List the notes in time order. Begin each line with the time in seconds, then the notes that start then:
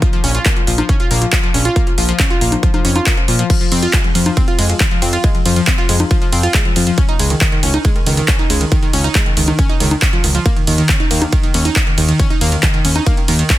0.02 F3, kick, closed hi-hat
0.13 F3, closed hi-hat
0.24 A#1 C#4, open hi-hat
0.35 F4, closed hi-hat
0.46 A#3, kick, clap, closed hi-hat
0.56 F3, closed hi-hat
0.67 A#1 F3, open hi-hat
0.78 F3, closed hi-hat, high conga
0.89 C#4, kick, closed hi-hat
1.00 F4, closed hi-hat
1.11 A#1 A#3, open hi-hat
1.22 F3, closed hi-hat
1.33 kick, clap, closed hi-hat
1.43 F3, closed hi-hat
1.54 A#1 C#4, open hi-hat
1.65 F4, closed hi-hat
1.76 A#3, kick, closed hi-hat
1.87 F3, closed hi-hat
1.98 A#1 F3, open hi-hat
2.09 F3, closed hi-hat
2.19 C#4, kick, clap, closed hi-hat
2.30 F4, closed hi-hat
2.41 A#1 A#3, open hi-hat
2.52 F3, closed hi-hat, high conga
2.63 F3, kick, closed hi-hat
2.74 F3, closed hi-hat, high conga
2.85 F2 C#4, open hi-hat
2.96 F4, closed hi-hat, high conga
3.06 A#3, kick, clap, closed hi-hat
3.17 F3, closed hi-hat
3.28 A#2 F3, open hi-hat
3.39 F3, closed hi-hat
3.50 F3, kick, closed hi-hat, crash, ride
3.61 F3, closed hi-hat
3.72 F2 C4, open hi-hat, ride
3.83 F4, closed hi-hat
3.93 G#3, kick, clap, closed hi-hat, ride
4.04 F3, closed hi-hat
4.15 F2 F3, open hi-hat, ride
4.26 F3, closed hi-hat, high conga
4.37 C4, kick, closed hi-hat, ride
4.48 F4, closed hi-hat
4.59 F2 G#3, open hi-hat, ride
4.70 F3, closed hi-hat
4.80 F3, kick, clap, closed hi-hat, ride
4.91 F3, closed hi-hat
5.02 F2 C4, open hi-hat, ride
5.13 F4, closed hi-hat
5.24 G#3, kick, closed hi-hat, ride
5.35 F3, closed hi-hat
5.46 F2 F3, open hi-hat, ride
5.56 F3, closed hi-hat
5.67 C4, kick, clap, closed hi-hat, ride
5.78 F4, closed hi-hat
5.89 F2 G#3, open hi-hat, ride
6.00 F3, closed hi-hat, high conga
6.11 F3, kick, closed hi-hat, ride
6.22 F3, closed hi-hat
6.33 F2 C4, open hi-hat, ride
6.43 F4, closed hi-hat
6.54 G#3, kick, clap, closed hi-hat, ride
6.65 F3, closed hi-hat
6.76 F2 F3, open hi-hat, ride
6.87 F3, closed hi-hat
6.98 C#4, kick, closed hi-hat, ride
7.09 D#4, closed hi-hat
7.19 C#2 G#3, open hi-hat, ride
7.30 D#3, closed hi-hat
7.41 D#3, kick, clap, closed hi-hat, ride
7.52 D#3, closed hi-hat
7.63 C#2 C#4, open hi-hat, ride
7.74 D#4, closed hi-hat, high conga
7.85 G#3, kick, closed hi-hat, ride
7.96 D#3, closed hi-hat
8.06 C#2 D#3, open hi-hat, ride
8.17 D#3, closed hi-hat
8.28 C#4, kick, clap, closed hi-hat, ride
8.39 D#4, closed hi-hat
8.50 C#2 G#3, open hi-hat, ride
8.61 D#3, closed hi-hat
8.72 D#3, kick, closed hi-hat, ride
8.83 D#3, closed hi-hat
8.93 C#2 C#4, open hi-hat, ride
9.04 D#4, closed hi-hat
9.15 G#3, kick, clap, closed hi-hat, ride
9.26 D#3, closed hi-hat
9.37 C#2 D#3, open hi-hat, ride
9.48 D#3, closed hi-hat, high conga
9.59 C#4, kick, closed hi-hat, ride
9.70 D#4, closed hi-hat
9.80 C#2 D#3, open hi-hat, ride
9.91 D#3, closed hi-hat, high conga
10.02 C#4, kick, clap, closed hi-hat, ride
10.13 F3, closed hi-hat
10.24 C#2 D#3, open hi-hat, ride
10.35 F3, closed hi-hat
10.46 A#3, kick, closed hi-hat, ride
10.56 D#3, closed hi-hat
10.67 D#2 D#3, open hi-hat, ride
10.78 D#3, closed hi-hat
10.89 C#4, kick, clap, closed hi-hat, ride
11.00 D#4, closed hi-hat
11.11 D#2 A#3, open hi-hat, ride
11.22 D#3, closed hi-hat, high conga
11.33 D#3, kick, closed hi-hat, ride
11.43 D#3, closed hi-hat
11.54 D#2 C#4, open hi-hat, ride
11.65 D#4, closed hi-hat
11.76 A#3, kick, clap, closed hi-hat, ride
11.87 D#3, closed hi-hat
11.98 D#2 D#3, open hi-hat, ride
12.09 D#3, closed hi-hat
12.19 C#4, kick, closed hi-hat, ride
12.30 D#4, closed hi-hat
12.41 D#2 A#3, open hi-hat, ride
12.52 D#3, closed hi-hat
12.63 D#3, kick, clap, closed hi-hat, ride
12.74 D#3, closed hi-hat
12.85 D#2 C#4, open hi-hat, ride
12.96 D#4, closed hi-hat, high conga
13.06 A#3, kick, closed hi-hat, ride
13.17 D#3, closed hi-hat
13.28 D#2 D#3, open hi-hat, ride
13.39 D#3, closed hi-hat
13.50 C#4, kick, clap, closed hi-hat, ride